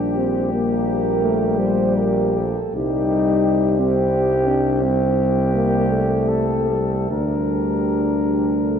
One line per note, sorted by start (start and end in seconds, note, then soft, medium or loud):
0.00 2.58 A#1 medium
0.00 2.58 G3 soft
0.00 0.20 D4 medium
0.00 0.37 G4 medium
0.00 2.59 G4 soft
0.18 0.52 C4 medium
0.53 1.25 A#3 medium
0.53 1.57 A#4 medium
1.23 1.60 A3 medium
1.58 2.46 G3 medium
1.58 1.96 C5 medium
1.95 2.36 A#4 medium
2.37 2.76 A4 medium
2.75 7.06 C2 medium
2.75 3.75 G3 medium
2.75 3.81 D#4 medium
2.75 3.75 G4 medium
2.75 5.86 G4 medium
3.78 4.80 G3 soft
3.78 4.48 C4 medium
3.78 4.81 G4 soft
4.47 4.84 D4 medium
4.82 7.06 G3 medium
4.82 5.56 C4 medium
4.82 6.30 G4 medium
5.54 5.91 A#3 medium
5.89 6.69 A3 medium
5.89 6.94 A4 medium
6.28 7.10 A4 soft
6.70 7.10 G3 soft
7.10 8.79 D2 soft
7.10 8.79 G3 soft
7.10 8.79 D4 medium
7.10 8.13 G4 soft
7.10 8.79 A#4 soft
8.23 8.58 G4 soft
8.61 8.79 A4 soft